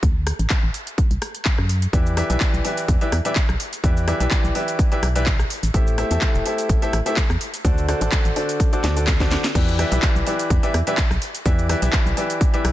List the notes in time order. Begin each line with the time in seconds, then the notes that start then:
0.03 D2, kick, closed hi-hat
0.27 cross-stick, open hi-hat
0.39 A1, closed hi-hat
0.50 kick, clap, closed hi-hat
0.63 A1
0.74 open hi-hat
0.87 closed hi-hat
0.98 kick, closed hi-hat
1.11 C2, closed hi-hat
1.22 cross-stick, open hi-hat
1.35 closed hi-hat
1.45 kick, clap, closed hi-hat
1.58 F#2, cross-stick
1.69 open hi-hat
1.82 closed hi-hat
1.93 E2 E3 E4 G4 B4 D5 E5, kick, closed hi-hat, cabasa
2.06 cabasa
2.17 E3 E4 G4 B4 D5 E5, cross-stick, open hi-hat
2.30 B1 E3 E4 G4 B4 D5 E5, closed hi-hat, cabasa
2.40 kick, clap, closed hi-hat, cabasa
2.54 B1, cabasa
2.65 E3 E4 G4 B4 D5 E5, open hi-hat
2.77 closed hi-hat, cabasa
2.88 E2, kick, closed hi-hat, cabasa
3.01 E3 E4 G4 B4 D5 E5, closed hi-hat, cabasa
3.12 E2, cross-stick, open hi-hat
3.25 E3 E4 G4 B4 D5 E5, closed hi-hat, cabasa
3.36 kick, clap, closed hi-hat, cabasa
3.49 B1, cross-stick, cabasa
3.60 open hi-hat
3.73 closed hi-hat, cabasa
3.84 E2 E3 E4 G4 B4 D5 E5, kick, closed hi-hat, cabasa
3.97 cabasa
4.08 E3 E4 G4 B4 D5 E5, cross-stick, open hi-hat
4.20 B1 E3 E4 G4 B4 D5 E5, closed hi-hat, cabasa
4.31 kick, clap, closed hi-hat, cabasa
4.44 B1, cabasa
4.55 E3 E4 G4 B4 D5 E5, open hi-hat
4.68 closed hi-hat, cabasa
4.79 kick, closed hi-hat, cabasa
4.92 E3 E4 G4 B4 D5 E5, closed hi-hat, cabasa
5.03 B1, cross-stick, open hi-hat
5.15 E3 E4 G4 B4 D5 E5, closed hi-hat, cabasa
5.26 kick, clap, closed hi-hat, cabasa
5.39 cross-stick, cabasa
5.50 open hi-hat
5.63 A1, closed hi-hat, cabasa
5.74 A1 A3 E4 G4 A4 C5 E5, kick, closed hi-hat, cabasa
5.87 cabasa
5.98 A3 E4 G4 A4 C5 E5, cross-stick, open hi-hat
6.11 E2 A3 E4 G4 A4 C5 E5, closed hi-hat, cabasa
6.21 kick, clap, closed hi-hat, cabasa
6.35 E1, cabasa
6.46 A3 E4 G4 A4 C5 E5, open hi-hat
6.58 closed hi-hat, cabasa
6.69 A1, kick, closed hi-hat, cabasa
6.82 A3 E4 G4 A4 C5 E5, closed hi-hat, cabasa
6.93 A1, cross-stick, open hi-hat
7.06 A3 E4 G4 A4 C5 E5, closed hi-hat, cabasa
7.17 kick, clap, closed hi-hat, cabasa
7.30 E2, cross-stick, cabasa
7.41 open hi-hat
7.54 closed hi-hat, cabasa
7.65 D2 D3 D4 F#4 A4 C5 D5, kick, closed hi-hat, cabasa
7.78 cabasa
7.88 D3 D4 F#4 A4 C5 D5, cross-stick, open hi-hat
8.01 A1 D3 D4 F#4 A4 C5 D5, closed hi-hat, cabasa
8.12 kick, clap, closed hi-hat, cabasa
8.25 A1, closed hi-hat, cabasa
8.36 D3 D4 F#4 A4 C5 D5, open hi-hat
8.49 closed hi-hat, cabasa
8.60 kick, closed hi-hat, cabasa
8.73 D3 D4 F#4 A4 C5 D5, closed hi-hat, cabasa
8.84 D2 D3 D4 F#4 A4 C5 D5, snare, open hi-hat
8.96 D3 D4 F#4 A4 C5 D5, closed hi-hat, cabasa
9.07 kick, snare, clap, closed hi-hat, cabasa
9.20 D3 D4 F#4 A4 C5 D5, kick, snare, cabasa
9.31 snare, open hi-hat
9.44 snare, open hi-hat, cabasa
9.55 E2 E3 E4 G4 B4 D5 E5, kick, closed hi-hat, crash, cabasa
9.68 cabasa
9.79 E3 E4 G4 B4 D5 E5, cross-stick, open hi-hat
9.92 B1 E3 E4 G4 B4 D5 E5, closed hi-hat, cabasa
10.02 kick, clap, closed hi-hat, cabasa
10.16 B1, cabasa
10.27 E3 E4 G4 B4 D5 E5, open hi-hat
10.39 closed hi-hat, cabasa
10.50 E2, kick, closed hi-hat, cabasa
10.63 E3 E4 G4 B4 D5 E5, closed hi-hat, cabasa
10.74 E2, cross-stick, open hi-hat
10.87 E3 E4 G4 B4 D5 E5, closed hi-hat, cabasa
10.97 kick, clap, closed hi-hat, cabasa
11.11 B1, cross-stick, cabasa
11.22 open hi-hat
11.35 closed hi-hat, cabasa
11.46 E2 E3 E4 G4 B4 D5 E5, kick, closed hi-hat, cabasa
11.59 cabasa
11.69 E3 E4 G4 B4 D5 E5, cross-stick, open hi-hat
11.82 B1 E3 E4 G4 B4 D5 E5, closed hi-hat, cabasa
11.93 kick, clap, closed hi-hat, cabasa
12.06 B1, cabasa
12.17 E3 E4 G4 B4 D5 E5, open hi-hat
12.30 closed hi-hat, cabasa
12.41 kick, closed hi-hat, cabasa
12.54 E3 E4 G4 B4 D5 E5, closed hi-hat, cabasa
12.65 B1, cross-stick, open hi-hat